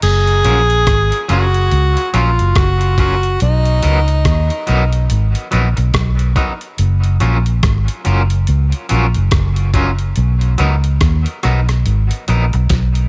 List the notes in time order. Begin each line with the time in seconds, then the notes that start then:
0.02 F#1 G#4, closed hi-hat, crash
0.27 closed hi-hat
0.44 A#1 F#3 C#4 F4 A#4, closed hi-hat
0.70 closed hi-hat
0.87 G#1, kick, cross-stick, closed hi-hat
1.12 closed hi-hat
1.28 F#1 F#3 C#4 F4 F#4 A#4, closed hi-hat
1.54 closed hi-hat
1.72 C#2, closed hi-hat
1.97 closed hi-hat
2.14 A#1 F#3 C#4 F4 A#4, closed hi-hat
2.39 F#1, closed hi-hat
2.55 F#1 F#4, kick, cross-stick, closed hi-hat
2.81 closed hi-hat
2.98 F#3 C#4 F4 F#4 A#4, kick, closed hi-hat
3.23 closed hi-hat
3.40 B1 D#4, closed hi-hat
3.65 closed hi-hat
3.83 C#2 F#3 B3 D#4 A#4, closed hi-hat
4.08 closed hi-hat
4.25 D#2, kick, cross-stick, closed hi-hat
4.50 closed hi-hat
4.67 B1 F#3 B3 D#4 A#4, closed hi-hat
4.93 closed hi-hat
5.10 G#1, closed hi-hat
5.35 closed hi-hat
5.51 A#1 F#3 B3 D#4 A#4, closed hi-hat
5.77 B1, muted clean electric guitar stroke, closed hi-hat
5.94 B1, kick, cross-stick, closed hi-hat
6.19 closed hi-hat
6.36 F#3 B3 D#4 A#4, kick, closed hi-hat
6.61 closed hi-hat
6.78 F#1, closed hi-hat
7.04 closed hi-hat
7.20 A#1 F#3 C#4 F4 A#4, closed hi-hat
7.46 closed hi-hat
7.63 G#1, kick, cross-stick, closed hi-hat
7.88 closed hi-hat
8.05 F#1 F#3 C#4 F4 A#4, closed hi-hat
8.30 closed hi-hat
8.47 C#2, closed hi-hat
8.72 closed hi-hat
8.89 A#1 F#3 C#4 F4 A#4, closed hi-hat
9.14 F#1, closed hi-hat
9.31 F#1, kick, cross-stick, closed hi-hat
9.56 closed hi-hat
9.74 F#3 C#4 F4 A#4, kick, closed hi-hat
9.99 closed hi-hat
10.16 B1, closed hi-hat
10.41 closed hi-hat
10.58 C#2 F#3 B3 D#4 A#4, closed hi-hat
10.84 closed hi-hat
11.01 D#2, kick, cross-stick, closed hi-hat
11.26 closed hi-hat
11.43 B1 F#3 B3 D#4 A#4, cross-stick, closed hi-hat
11.69 cross-stick, closed hi-hat
11.86 G#1, closed hi-hat
12.11 closed hi-hat
12.28 A#1 F#3 B3 D#4 A#4, closed hi-hat
12.53 B1, muted clean electric guitar stroke, closed hi-hat
12.69 B1, kick, snare, closed hi-hat
12.95 closed hi-hat